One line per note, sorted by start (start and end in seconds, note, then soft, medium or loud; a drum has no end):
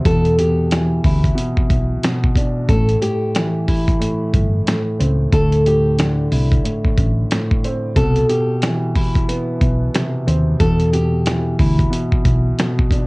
0.05 1.00 E2 loud
0.05 0.38 B2 medium
0.05 0.35 A4 loud
0.05 kick loud
0.05 closed hi-hat medium
0.25 closed hi-hat soft
0.38 1.34 B2 medium
0.38 1.00 G4 medium
0.38 closed hi-hat medium
0.71 2.36 E3 medium
0.71 snare loud
0.71 snare medium
0.71 closed hi-hat medium
1.04 1.30 D2 medium
1.04 2.00 E4 medium
1.04 kick medium
1.04 open hi-hat medium
1.24 kick medium
1.24 closed hi-hat soft
1.35 2.02 B2 medium
1.35 closed hi-hat medium
1.57 kick loud
1.70 1.96 B1 medium
1.70 kick loud
1.70 closed hi-hat medium
2.03 2.70 B2 medium
2.03 snare loud
2.03 snare medium
2.03 closed hi-hat medium
2.24 kick medium
2.36 2.69 D4 medium
2.36 kick loud
2.36 closed hi-hat medium
2.69 2.95 A1 loud
2.69 3.01 A2 medium
2.69 2.99 A4 loud
2.69 kick loud
2.69 closed hi-hat medium
2.89 closed hi-hat soft
3.02 3.99 A2 medium
3.02 3.64 G4 medium
3.02 closed hi-hat medium
3.35 5.00 E3 medium
3.35 snare loud
3.35 snare medium
3.35 closed hi-hat medium
3.68 4.63 E4 medium
3.68 kick medium
3.68 open hi-hat medium
3.88 kick medium
3.88 closed hi-hat soft
4.00 4.65 A2 medium
4.00 closed hi-hat medium
4.34 4.60 G1 medium
4.34 kick loud
4.34 closed hi-hat medium
4.67 5.31 A2 medium
4.67 snare loud
4.67 snare medium
4.67 closed hi-hat loud
4.99 5.26 C#2 medium
4.99 5.33 C4 medium
4.99 closed hi-hat medium
5.32 6.28 D2 loud
5.32 5.65 A2 medium
5.32 5.63 A4 loud
5.32 kick loud
5.32 closed hi-hat medium
5.52 closed hi-hat soft
5.66 6.62 A2 medium
5.66 6.28 G4 medium
5.66 closed hi-hat medium
5.98 7.64 D3 medium
5.98 snare loud
5.98 snare medium
5.98 closed hi-hat medium
6.32 6.58 C2 loud
6.32 7.27 E4 medium
6.32 open hi-hat medium
6.52 kick medium
6.52 closed hi-hat medium
6.64 7.30 A2 medium
6.64 closed hi-hat medium
6.84 kick medium
6.97 7.24 A1 medium
6.97 kick loud
6.97 closed hi-hat medium
7.31 7.97 A2 medium
7.31 snare loud
7.31 snare medium
7.31 closed hi-hat medium
7.51 kick loud
7.64 7.97 C4 medium
7.64 closed hi-hat medium
7.96 8.22 C2 loud
7.96 8.28 B2 medium
7.96 8.26 A4 loud
7.96 kick loud
7.96 closed hi-hat medium
8.16 closed hi-hat soft
8.29 9.94 B2 medium
8.29 8.91 G4 medium
8.29 closed hi-hat medium
8.62 10.28 E3 medium
8.62 snare loud
8.62 snare medium
8.62 closed hi-hat medium
8.96 9.91 E4 medium
8.96 kick medium
8.96 open hi-hat medium
9.15 kick medium
9.15 closed hi-hat soft
9.28 10.60 B3 medium
9.28 closed hi-hat medium
9.61 9.87 B1 medium
9.61 kick loud
9.61 closed hi-hat medium
9.95 10.60 C3 medium
9.95 snare loud
9.95 snare medium
9.95 closed hi-hat loud
10.27 10.53 D#2 loud
10.27 10.60 C4 medium
10.27 closed hi-hat medium
10.60 11.55 E2 loud
10.60 10.93 B2 medium
10.60 10.90 A4 loud
10.60 kick loud
10.60 closed hi-hat medium
10.80 closed hi-hat soft
10.93 11.89 B2 medium
10.93 11.55 G4 medium
10.93 closed hi-hat medium
11.26 12.91 E3 medium
11.26 snare loud
11.26 snare medium
11.26 closed hi-hat medium
11.59 11.85 D2 medium
11.59 12.55 E4 medium
11.59 kick medium
11.59 open hi-hat medium
11.79 kick medium
11.79 closed hi-hat medium
11.90 12.57 B2 medium
11.90 closed hi-hat medium
12.12 kick loud
12.25 12.51 B1 medium
12.25 kick loud
12.25 closed hi-hat medium
12.59 13.07 B2 medium
12.59 snare loud
12.59 snare medium
12.59 closed hi-hat loud
12.79 kick medium
12.91 13.07 D4 medium
12.91 kick loud
12.91 closed hi-hat medium